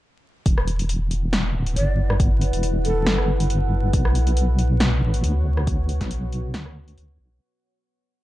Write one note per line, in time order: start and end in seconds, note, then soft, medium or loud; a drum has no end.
0.46 1.56 E1 loud
0.46 3.90 E4 medium
0.46 3.90 B4 medium
0.46 3.90 F#5 medium
0.46 kick loud
0.46 closed hi-hat medium
0.58 cross-stick medium
0.68 closed hi-hat medium
0.79 closed hi-hat medium
0.89 closed hi-hat medium
1.11 closed hi-hat medium
1.33 snare loud
1.33 closed hi-hat medium
1.54 1.78 D1 medium
1.66 closed hi-hat medium
1.76 2.52 G1 loud
1.76 2.10 D5 medium
1.76 closed hi-hat medium
2.10 cross-stick medium
2.20 kick loud
2.20 closed hi-hat medium
2.41 closed hi-hat medium
2.53 3.08 E1 medium
2.53 closed hi-hat medium
2.63 closed hi-hat medium
2.85 3.28 A4 medium
2.85 closed hi-hat medium
3.07 3.92 G1 medium
3.07 snare loud
3.07 closed hi-hat medium
3.18 cross-stick medium
3.40 closed hi-hat medium
3.50 closed hi-hat medium
3.93 5.04 B1 loud
3.93 7.38 B3 medium
3.93 7.38 F#4 medium
3.93 7.38 C#5 medium
3.93 kick loud
3.93 closed hi-hat medium
4.05 cross-stick medium
4.15 closed hi-hat medium
4.27 closed hi-hat medium
4.37 closed hi-hat medium
4.59 closed hi-hat medium
4.80 snare loud
4.80 closed hi-hat medium
5.02 5.25 A1 medium
5.14 closed hi-hat soft
5.24 5.99 D2 loud
5.24 closed hi-hat medium
5.57 cross-stick medium
5.67 kick loud
5.67 closed hi-hat medium
5.89 closed hi-hat medium
6.01 6.56 B1 medium
6.01 kick medium
6.01 snare soft
6.01 closed hi-hat medium
6.11 closed hi-hat medium
6.33 closed hi-hat medium
6.54 6.97 D2 medium
6.54 snare loud
6.54 closed hi-hat medium
6.66 cross-stick medium
6.88 closed hi-hat medium
6.98 closed hi-hat medium
7.20 7.40 B1 medium